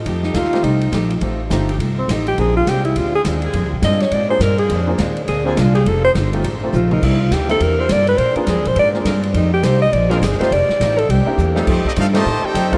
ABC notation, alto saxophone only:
X:1
M:4/4
L:1/16
Q:"Swing" 1/4=206
K:Bb
V:1 name="Alto saxophone"
z2 E2 F4 E6 z2 | z8 z2 C2 E2 G2 | _A2 F2 G2 =E2 F2 A2 z4 | z4 e2 _d2 =d2 c2 B2 _A2- |
_A2 z6 A2 C2 F2 A2 | A2 c2 z8 F2 E2 | =E2 F2 G2 A2 B2 c2 d2 =B2 | c2 F2 _A2 c2 d2 z6 |
E2 G2 c2 e2 d2 F2 _A2 c2 | d6 A2 G6- G z | [K:Cmix] z16 |]